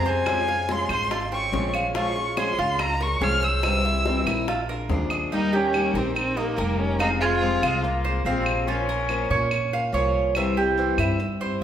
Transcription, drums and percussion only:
0.26 high bongo medium
0.26 claves medium
0.47 high bongo soft
0.69 high bongo medium
0.89 high bongo soft
0.89 claves medium
1.11 high bongo medium
1.32 high bongo soft
1.53 high bongo soft
1.53 low bongo medium
1.74 claves medium
1.95 high bongo medium
2.16 high bongo soft
2.37 high bongo medium
2.37 claves medium
2.59 high bongo soft
2.79 high bongo medium
2.79 claves medium
3.01 high bongo soft
3.21 high bongo soft
3.21 low bongo medium
3.63 high bongo medium
3.63 claves medium
3.84 high bongo soft
4.06 high bongo medium
4.27 high bongo soft
4.27 claves medium
4.48 high bongo medium
4.69 high bongo soft
4.90 high bongo soft
4.90 low bongo medium
5.10 claves medium
5.74 claves medium
6.16 claves medium
7.00 claves medium
7.63 claves medium
8.46 claves medium
9.09 claves medium
9.51 claves medium
10.35 claves medium
10.98 claves medium

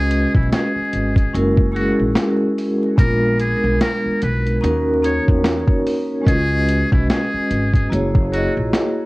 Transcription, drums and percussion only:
0.11 closed hi-hat medium
0.35 kick medium
0.52 snare medium
0.52 closed hi-hat medium
0.93 closed hi-hat medium
1.16 kick medium
1.16 closed hi-hat soft
1.35 closed hi-hat medium
1.57 kick medium
1.76 closed hi-hat medium
2.15 snare loud
2.15 closed hi-hat medium
2.58 open hi-hat soft
2.98 kick loud
2.98 closed hi-hat medium
3.40 closed hi-hat medium
3.81 snare medium
3.81 closed hi-hat medium
4.22 closed hi-hat medium
4.46 closed hi-hat soft
4.64 closed hi-hat medium
5.04 closed hi-hat medium
5.28 kick medium
5.44 snare loud
5.44 closed hi-hat medium
5.68 kick medium
5.87 open hi-hat soft
6.27 kick loud
6.27 closed hi-hat medium
6.69 closed hi-hat medium
6.92 kick medium
7.10 snare loud
7.10 closed hi-hat medium
7.51 closed hi-hat medium
7.74 kick medium
7.74 closed hi-hat soft
7.93 closed hi-hat medium
8.15 kick loud
8.33 closed hi-hat medium
8.73 snare loud
8.73 closed hi-hat medium

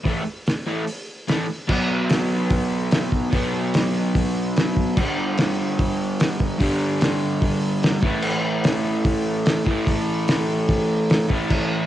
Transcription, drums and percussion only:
0.05 kick loud
0.05 open hi-hat medium
0.47 snare loud
0.47 open hi-hat medium
0.87 open hi-hat medium
1.28 snare loud
1.28 open hi-hat medium
1.69 kick loud
1.69 crash loud
2.09 snare loud
2.09 open hi-hat medium
2.50 kick loud
2.50 open hi-hat medium
2.91 snare loud
2.91 open hi-hat medium
3.12 kick medium
3.33 kick loud
3.33 open hi-hat medium
3.74 snare loud
3.74 open hi-hat medium
4.15 kick loud
4.15 open hi-hat medium
4.56 snare loud
4.56 open hi-hat medium
4.77 kick medium
4.97 kick loud
4.97 crash loud
5.38 snare loud
5.38 open hi-hat medium
5.79 kick loud
5.79 open hi-hat medium
6.20 snare loud
6.20 open hi-hat medium
6.40 kick medium
6.60 kick loud
6.60 open hi-hat medium
7.01 snare loud
7.01 open hi-hat medium
7.42 kick loud
7.42 open hi-hat medium
7.83 snare loud
7.83 open hi-hat medium
8.03 kick loud
8.22 crash loud
8.64 snare loud
8.64 open hi-hat medium
9.05 kick loud
9.05 open hi-hat medium
9.46 snare loud
9.46 open hi-hat medium
9.66 kick medium
9.87 kick loud
9.87 open hi-hat medium
10.28 snare loud
10.28 open hi-hat medium
10.69 kick loud
10.69 open hi-hat medium
11.10 snare loud
11.10 open hi-hat medium
11.30 kick medium
11.50 kick loud
11.50 crash loud

